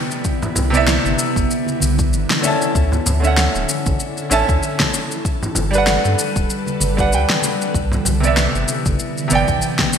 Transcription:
Already playing: C3 D3 B3 E4 D5 E5 G5
0.11 shaker
0.25 kick, shaker
0.42 low conga, shaker
0.56 C2, low conga, shaker
0.70 C3 B3, shaker
0.75 D5 E5
0.88 snare, shaker
1.05 G1, shaker
1.19 shaker
1.36 G1, kick, shaker
1.51 shaker
1.66 high conga, shaker
1.80 C2, high conga, shaker
1.99 kick, shaker
2.13 G1, shaker
2.30 snare, shaker
2.41 D3 C#4, high conga, shaker
2.45 E5 A5
2.62 shaker
2.75 D2 D3 C#4 E4 A4, kick, shaker
2.92 low conga, shaker
3.06 D2, low conga, shaker
3.20 D3 C#4
3.24 E5 F#5, shaker
3.37 snare, shaker
3.55 D1, shaker
3.69 shaker
3.86 A1, kick, high conga, shaker
4.00 shaker
4.17 shaker
4.30 A1 D3 C#4 E5 A5, shaker
4.49 D2, kick, shaker
4.63 shaker
4.80 kick, snare, high conga, shaker
4.94 D3 G3 B4, shaker
5.11 shaker
5.25 kick, shaker
5.43 low conga, shaker
5.55 G1, low conga, shaker
5.71 G3 D4, shaker
5.75 B4 F#5
5.87 snare, shaker
6.05 G2, shaker
6.19 shaker
6.36 D1, kick, shaker
6.50 shaker
6.66 high conga, shaker
6.80 G1, high conga, shaker
6.97 G3 D4 B4 F#5, kick, shaker
7.11 D2 G3 D4 B4 G5, shaker
7.30 snare, shaker
7.42 high conga, shaker
7.62 shaker
7.74 C2 E3 B3 E4, kick, shaker
7.92 low conga, shaker
8.05 C2, low conga, shaker
8.20 C3 B3, shaker
8.25 D5 E5
8.37 snare, shaker
8.55 G1, shaker
8.68 shaker
8.86 G1, kick, high conga, shaker
8.99 shaker
9.18 shaker
9.28 G1 C3 B3, shaker
9.33 D5 G5
9.48 C2, kick, shaker
9.62 shaker
9.79 kick, snare, high conga, shaker
9.93 shaker

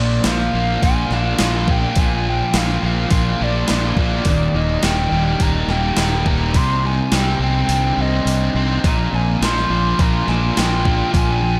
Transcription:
Already playing: A#1 A#2
0.00 F3 D5
0.24 A#1 F3 A#3 F5, snare, open hi-hat
0.40 snare
0.54 A#1 A#3 F4
0.82 A#1 D4 F4 G#5, kick, open hi-hat
1.10 A#1 A#3 D4 F5, snare
1.38 A#1 D4 F4, snare, open hi-hat
1.68 A#3 F4 G5, kick
1.96 A#1 A#2 G#5, kick, open hi-hat
2.28 F3 G5
2.54 A#1 F3 A#3 F5, snare, open hi-hat
2.68 snare
2.83 A#1 A#3 F4 F5
3.11 A#1 D4 F4, kick, open hi-hat
3.39 A#1 A#3 D4 D5
3.68 A#1 D4 F4, snare, open hi-hat
3.96 A#1 A#3 F4, kick
4.25 D#1 D#2 D5, kick, open hi-hat
4.54 D#1 D#3 D#5
4.83 D#1 D#3 G3 G5, snare, open hi-hat
4.97 snare
5.12 D#1 G3 D#4
5.40 D#1 A#3 D#4 A#5, kick, open hi-hat
5.68 D#1 G3 A#3 G5, snare
5.97 D#1 A#3 D#4, snare, open hi-hat
6.26 G3 D#4 A#5, kick
6.54 C2 C3 C6, kick, open hi-hat
6.84 G3 G#5
7.12 C2 G3 C4 G5, snare, open hi-hat
7.39 C2 C4 D#4 G5
7.69 C2 D4, open hi-hat
7.97 C2 C4 D#5
8.25 C2 D4, open hi-hat
8.55 C2 C4 D#4
8.84 A#1 A#2 A#5, kick, open hi-hat
9.13 A#1 F3 G#5
9.41 A#1 F3 A#3 C6, snare, open hi-hat
9.58 snare
9.70 A#1 A#3 F4
9.99 A#1 D4 F4 A#5, kick, open hi-hat
10.26 A#1 A#3 D4 G#5, snare
10.56 A#1 D4 F4 G5, snare, open hi-hat
10.84 A#3 F4, kick
11.12 A#1 A#2 G#5, kick, open hi-hat
11.42 F3

